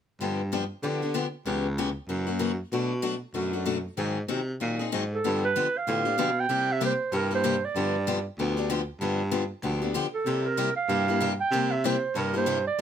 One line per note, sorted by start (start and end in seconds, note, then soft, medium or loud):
0.21 0.71 G2 medium
0.21 0.40 D3 medium
0.21 0.40 F3 medium
0.21 0.41 B3 medium
0.21 0.41 D4 medium
0.21 0.41 G4 medium
0.52 0.63 D3 medium
0.52 0.63 F3 medium
0.52 0.63 B3 medium
0.52 0.63 D4 medium
0.52 0.63 G4 medium
0.83 1.01 D3 medium
0.83 1.33 D3 medium
0.83 1.01 F3 medium
0.83 1.01 B3 medium
0.83 1.02 D4 medium
0.83 1.01 G4 medium
1.02 1.14 B3 soft
1.02 1.13 D4 soft
1.02 1.14 G4 soft
1.14 1.25 D3 medium
1.14 1.25 F3 medium
1.14 1.26 B3 medium
1.14 1.25 D4 medium
1.14 1.26 G4 medium
1.46 1.96 C#2 medium
1.46 1.66 C#3 medium
1.46 1.66 E3 medium
1.46 1.66 B3 medium
1.46 1.66 C#4 medium
1.46 1.67 G4 medium
1.78 1.89 C#3 medium
1.78 1.89 E3 medium
1.78 1.89 B3 medium
1.78 1.89 C#4 medium
1.78 1.89 G4 medium
2.09 2.59 F#2 medium
2.09 2.27 C#3 medium
2.09 2.27 E3 medium
2.09 2.27 A#3 medium
2.09 2.27 C#4 medium
2.09 2.25 F#4 medium
2.27 2.38 A#3 soft
2.27 2.39 C#4 soft
2.27 2.39 F#4 medium
2.39 2.51 C#3 medium
2.39 2.51 E3 medium
2.39 2.51 A#3 medium
2.39 2.51 C#4 medium
2.39 2.51 F#4 medium
2.72 2.92 B2 medium
2.72 3.23 B2 medium
2.72 2.92 F#3 medium
2.72 2.92 A3 medium
2.72 2.92 D4 medium
2.72 2.92 F#4 medium
3.02 3.14 B2 medium
3.02 3.14 F#3 medium
3.02 3.14 A3 medium
3.02 3.14 D4 medium
3.02 3.14 F#4 medium
3.34 3.85 F#2 medium
3.34 3.52 B2 medium
3.34 3.53 F#3 medium
3.34 3.53 A3 medium
3.34 3.53 D4 medium
3.34 3.52 F#4 medium
3.53 3.65 A3 soft
3.53 3.65 D4 soft
3.53 3.65 F#4 medium
3.65 3.77 B2 medium
3.65 3.77 F#3 medium
3.65 3.77 A3 medium
3.65 3.77 D4 medium
3.65 3.77 F#4 medium
3.97 4.23 G#2 medium
3.97 4.17 D#3 medium
3.97 4.17 F#3 medium
3.97 4.17 C4 medium
3.97 4.18 D#4 medium
3.97 4.18 G#4 medium
4.28 4.56 C3 medium
4.28 4.40 D#3 medium
4.28 4.40 F#3 medium
4.28 4.40 C4 medium
4.28 4.40 D#4 medium
4.28 4.40 G#4 medium
4.60 4.88 A#2 medium
4.60 4.78 D#3 medium
4.60 4.79 F#3 medium
4.60 4.79 C4 medium
4.60 4.79 D#4 medium
4.60 4.78 G#4 medium
4.79 4.91 C4 soft
4.79 4.91 D#4 soft
4.79 4.91 G#4 soft
4.92 5.20 G#2 medium
4.92 5.03 D#3 medium
4.92 5.03 F#3 medium
4.92 5.03 C4 medium
4.92 5.03 D#4 medium
4.92 5.03 G#4 medium
5.14 5.42 A4 medium
5.24 5.54 G2 medium
5.24 5.44 D3 medium
5.24 5.44 F3 medium
5.24 5.44 B3 medium
5.24 5.44 D4 medium
5.24 5.44 G4 medium
5.45 5.79 B4 medium
5.56 5.66 D3 medium
5.56 5.66 F3 medium
5.56 5.66 B3 medium
5.56 5.67 D4 medium
5.56 5.67 G4 medium
5.77 6.42 F5 loud
5.87 6.14 A2 medium
5.87 6.05 D3 medium
5.87 6.05 F3 medium
5.87 6.05 B3 medium
5.87 6.05 D4 medium
5.87 6.04 G4 medium
6.05 6.17 B3 soft
6.05 6.17 D4 soft
6.05 6.17 G4 medium
6.18 6.45 B2 medium
6.18 6.29 D3 medium
6.18 6.29 F3 medium
6.18 6.29 B3 medium
6.18 6.29 D4 medium
6.18 6.29 G4 medium
6.40 6.74 G5 loud
6.49 6.99 C3 medium
6.49 6.69 C3 medium
6.49 6.69 G3 medium
6.49 6.69 A#3 medium
6.49 6.69 E4 medium
6.49 6.70 G4 medium
6.73 6.83 E5 medium
6.81 6.92 C3 medium
6.81 6.92 G3 medium
6.81 6.92 A#3 medium
6.81 6.92 E4 medium
6.81 6.92 G4 medium
6.85 7.12 C5 medium
7.12 7.63 G2 medium
7.12 7.30 C3 medium
7.12 7.30 G3 medium
7.12 7.30 A#3 medium
7.12 7.31 E4 medium
7.12 7.30 G4 medium
7.12 7.32 A#4 medium
7.31 7.43 A#3 soft
7.31 7.43 E4 soft
7.31 7.43 G4 medium
7.35 7.66 C5 medium
7.44 7.54 C3 medium
7.44 7.55 G3 medium
7.44 7.55 A#3 medium
7.44 7.55 E4 medium
7.44 7.55 G4 medium
7.65 8.27 D5 medium
7.75 8.26 G2 medium
7.75 7.95 D3 medium
7.75 7.95 F3 medium
7.75 7.96 B3 medium
7.75 7.96 D4 medium
7.75 7.95 G4 medium
8.07 8.18 D3 medium
8.07 8.18 F3 medium
8.07 8.18 B3 medium
8.07 8.18 D4 medium
8.07 8.18 G4 medium
8.39 8.89 D2 medium
8.39 8.56 D3 medium
8.39 8.57 F3 medium
8.39 8.57 B3 medium
8.39 8.57 D4 medium
8.39 8.56 G4 medium
8.57 8.69 B3 soft
8.57 8.69 D4 soft
8.57 8.69 G4 medium
8.70 8.80 D3 medium
8.70 8.80 F3 medium
8.70 8.81 B3 medium
8.70 8.81 D4 medium
8.70 8.81 G4 medium
9.00 9.51 G2 medium
9.00 9.21 D3 medium
9.00 9.21 F3 medium
9.00 9.21 B3 medium
9.00 9.21 D4 medium
9.00 9.22 G4 medium
9.31 9.43 D3 medium
9.31 9.43 F3 medium
9.31 9.43 B3 medium
9.31 9.43 D4 loud
9.31 9.43 G4 medium
9.63 9.93 D2 medium
9.63 9.81 D3 medium
9.63 9.81 F3 medium
9.63 9.81 B3 medium
9.63 9.81 D4 medium
9.63 9.80 G4 medium
9.82 9.94 B3 soft
9.82 9.94 D4 soft
9.82 9.94 G4 medium
9.94 10.05 D3 medium
9.94 10.06 F3 medium
9.94 10.06 B3 medium
9.94 10.06 D4 loud
9.94 10.06 G4 medium
10.14 10.47 A4 medium
10.26 10.76 C3 medium
10.26 10.46 C3 medium
10.26 10.46 G3 medium
10.26 10.46 A#3 medium
10.26 10.47 E4 medium
10.26 10.47 G4 medium
10.46 10.76 A#4 medium
10.57 10.68 C3 medium
10.57 10.69 G3 medium
10.57 10.69 A#3 medium
10.57 10.69 E4 medium
10.57 10.69 G4 medium
10.77 11.36 F5 loud
10.88 11.39 G2 medium
10.88 11.07 C3 medium
10.88 11.07 G3 medium
10.88 11.07 A#3 medium
10.88 11.08 E4 medium
10.88 11.07 G4 medium
11.08 11.20 A#3 soft
11.08 11.20 E4 soft
11.08 11.20 G4 medium
11.20 11.31 C3 medium
11.20 11.32 G3 medium
11.20 11.32 A#3 medium
11.20 11.32 E4 medium
11.20 11.32 G4 medium
11.40 11.73 G5 loud
11.51 12.02 C3 medium
11.51 11.72 C3 medium
11.51 11.73 G3 medium
11.51 11.73 A#3 medium
11.51 11.73 E4 medium
11.51 11.73 G4 medium
11.72 11.87 E5 loud
11.84 11.95 C3 medium
11.84 11.95 G3 medium
11.84 11.95 A#3 medium
11.84 11.95 E4 medium
11.84 11.95 G4 loud
11.84 12.20 C5 medium
12.15 12.66 G2 medium
12.15 12.33 C3 medium
12.15 12.33 G3 medium
12.15 12.33 A#3 medium
12.15 12.33 E4 medium
12.15 12.32 G4 medium
12.15 12.35 A#4 medium
12.34 12.46 A#3 soft
12.34 12.46 E4 medium
12.34 12.46 G4 medium
12.34 12.65 C5 medium
12.46 12.57 C3 medium
12.46 12.57 G3 medium
12.46 12.58 A#3 medium
12.46 12.58 E4 medium
12.46 12.58 G4 medium
12.68 12.81 D5 medium